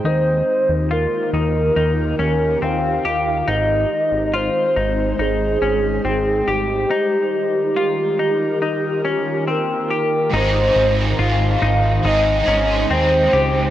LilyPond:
<<
  \new Staff \with { instrumentName = "Soft synth lead" } { \time 4/4 \key aes \major \tempo 4 = 70 c''4 bes'2 f''4 | ees''4 c''4 aes'4. g'8~ | g'2. bes'4 | c''4 f''4 ees''4 c''4 | }
  \new Staff \with { instrumentName = "Ambient pad" } { \time 4/4 \key aes \major << { <ees f' g'>1 | <aes c''>1 | <ees ees' f' g'>1 | <aes c''>1 | } \\ { <ees' bes'>1~ | <ees' bes'>1 | bes'1 | ees'1 | } >> }
  \new Staff \with { instrumentName = "Clean electric guitar" } { \time 4/4 \key aes \major ees'4 f'8 ees'8 ees'8 des'8 c'8 g'8 | ees'4 f'8 ees'8 ees'8 des'8 c'8 g'8 | ees'4 f'8 ees'8 ees'8 des'8 c'8 g'8 | ees'4 f'8 ees'8 ees'8 des'8 c'8 g'8 | }
  \new Staff \with { instrumentName = "Overdriven electric guitar" } { \time 4/4 \key aes \major r1 | r1 | r1 | <aes, ees aes c' ees' aes'>2 <aes c' ees' aes'>8 <aes c' ees' aes'>4. | }
  \new Staff \with { instrumentName = "Analog synth bass" } { \clef bass \time 4/4 \key aes \major ees,8 r16 ees,8 r16 ees,8 ees,8 ees,8 ees,8 ees,8 | aes,,8 r16 aes,,8 r16 aes,,8 aes,,8 aes,,8 aes,,8 aes,,8 | r1 | aes,,8 aes,,8 aes,,8 aes,,8 aes,,8 aes,,8 ees,8 des,8 | }
>>